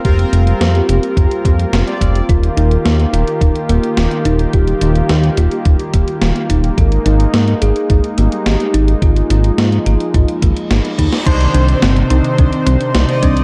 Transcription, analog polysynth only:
X:1
M:4/4
L:1/16
Q:1/4=107
K:Cm
V:1 name="Analog polysynth"
[CFB]3 [CFB]8- [CFB]2 [CFd]3 | z16 | z16 | z16 |
z16 | [DEc]3 [DEc]8- [DEc]2 [Ede]3 |]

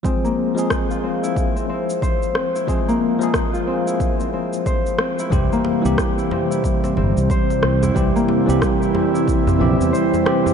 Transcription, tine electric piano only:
X:1
M:4/4
L:1/16
Q:"Swing 16ths" 1/4=91
K:none
V:1 name="Tine electric piano" clef=bass
[F,_A,C_A]3 [F,A,CA]12- [F,A,CA] | [F,_A,_A]3 [F,A,A]12- [F,A,A] | [E,G,CG]3 [E,G,CG]12- [E,G,CG] | [E,G,CG]3 [E,G,CG]6- [E,G,CG] [E,G,CG]4 [E,G,CG]2 |]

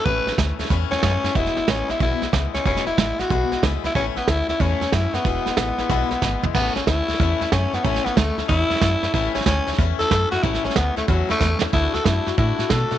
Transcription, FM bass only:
X:1
M:4/4
L:1/8
Q:"Swing" 1/4=185
K:A
V:1 name="FM bass" clef=bass
A,,, A,,, D,, D,, E,, E,, F,, F,, | E,,, E,,, A,,, A,,, B,,, B,,, C,, C,, | E,,, E,,, A,,, A,,, B,,, B,,, C,, C,, | A,,, A,,, D,, D,, E,, E,, F,, F,, |
E,,, E,,, A,,, A,,, B,,, B,,, G,,, G,,, | A,,, A,,, D,, D,, E,, E,, F,, F,, | A,,, A,,, D,, D,, E,, E,, F,, F,, | A,,, A,,, D,, D,, E,, E,, F,, F,, |
A,,, A,,, D,, D,, E,, E,, E,, E,, | D,, D,, F,, F,, A,, A,, B,, B,, |]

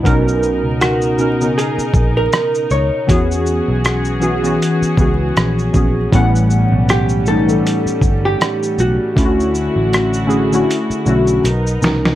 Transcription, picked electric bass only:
X:1
M:4/4
L:1/16
Q:"Swing 16ths" 1/4=79
K:B
V:1 name="Picked electric bass" clef=bass
B,,,3 C,,4- C,, z2 A,,,2 z2 C,, z | E,,3 B,,,4- B,,, z2 C,,2 A,,,2 A,,,2 | =A,,,3 B,,,4- B,,, z2 =G,,,2 z2 B,,, z | =D,,3 =A,,,4- A,,, z2 B,,,2 B,,,2 =C,,2 |]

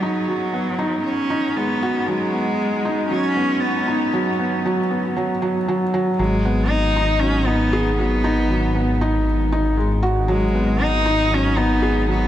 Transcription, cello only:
X:1
M:4/4
L:1/8
Q:1/4=117
K:G#m
V:1 name="Cello"
F,4 C2 B,2 | G,4 C2 B,2 | z8 | G,2 D2 C B,2 B,- |
B,3 z4 z | G,2 D2 C B,2 B, |]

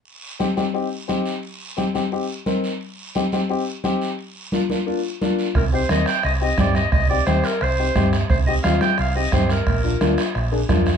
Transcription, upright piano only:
X:1
M:4/4
L:1/8
Q:1/4=175
K:Cm
V:1 name="Upright piano"
z2 [CEG] [CEG] [CEG] z [CEG] z | z2 [CEG] [CEG] [CEG] z [CEB] z | z2 [CEG] [CEG] [CEG] z [CEG] z | z2 [B,DF] [B,DF] [B,DF] z [B,DF] z |
z [CEG] [CEB] z2 [CEG] [CEG] z | z [CEG] [CEG] z2 [CEG] [CEG] z | z [CEG] [CEF] z2 [CEG] [CEG] z | z [B,DF] [B,DF] z2 [B,DA] [B,DF] z |]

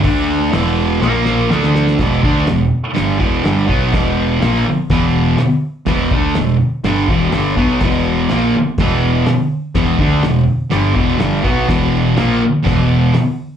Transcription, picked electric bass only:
X:1
M:4/4
L:1/8
Q:1/4=124
K:Dlyd
V:1 name="Picked electric bass" clef=bass
D,,2 E,,,2 ^A,,,2 D,,2 | E,,, D,, E,,, z =G,,, E,,, G,,, B,,, | E,,,2 ^A,,, z E,,,2 z2 | E,,, D,, E,,, z =G,,, E,,, G,,, B,,, |
E,,,2 ^A,,, z E,,,2 z2 | E,,, D,, E,,, z =G,,, E,,, G,,, B,,, | E,,,2 ^A,,, z E,,,2 z2 |]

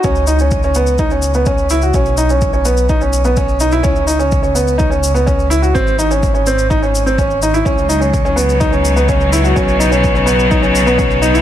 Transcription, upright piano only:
X:1
M:4/4
L:1/16
Q:1/4=126
K:C#m
V:1 name="Upright piano"
C2 D C2 C B,2 D C2 B, C2 E F | C2 D C2 C B,2 D C2 B, C2 D E | C2 D C2 C B,2 D C2 B, C2 E F | ^B,2 D C2 C B,2 D C2 B, C2 D E |
C2 D C2 C B,2 D C2 B, C2 E F | C2 D C2 C B,2 D C2 B, C2 D E |]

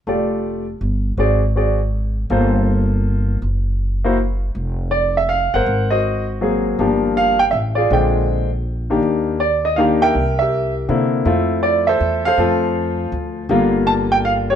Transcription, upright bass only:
X:1
M:3/4
L:1/8
Q:"Swing" 1/4=161
K:F
V:1 name="Upright bass" clef=bass
F,,,4 G,,,2 | _A,,,6 | G,,,6 | _G,,,6 |
F,,,4- F,,, G,,, | _A,,,6 | G,,,4 A,,,2 | B,,,6 |
_E,,6 | C,,4 C,2 | F,,4 E,,2 | F,,4 D,,2 |
G,,,6 |]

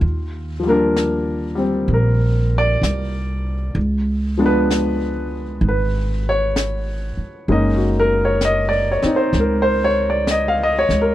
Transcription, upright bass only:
X:1
M:4/4
L:1/8
Q:"Swing" 1/4=64
K:Eb
V:1 name="Upright bass" clef=bass
E,,4 B,,,2 C,,2 | _D,,4 A,,,3 z | _G,,,3 z _D,,3 D,, |]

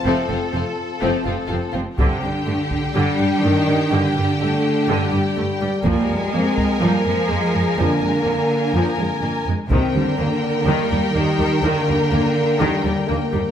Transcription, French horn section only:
X:1
M:4/4
L:1/8
Q:1/4=124
K:Gm
V:1 name="French horn section"
[CF]6- [CF] z | z4 D4 | G,2 A,2 G,4- | G,2 C2 B,2 _A,2 |
B,6- B, z | C2 B,4 G,2 | B,2 B,2 G,2 B,2 |]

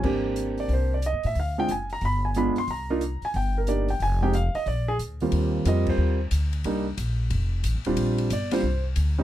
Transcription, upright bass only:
X:1
M:4/4
L:1/8
Q:"Swing" 1/4=181
K:Eb
V:1 name="Upright bass" clef=bass
A,,,4 C,,2- (3C,, G,, =A,, | D,,2 ^F,,,2 G,,,3 z | C,,3 z G,,,4 | F,,,3 z B,,,2 D,,2 |
E,,2 F,,2 E,,2 D,,2 | C,,2 B,,,2 F,,,2 (3=A,,, F,,, E,,, | B,,,2 G,,,2 C,,2 D,,2 |]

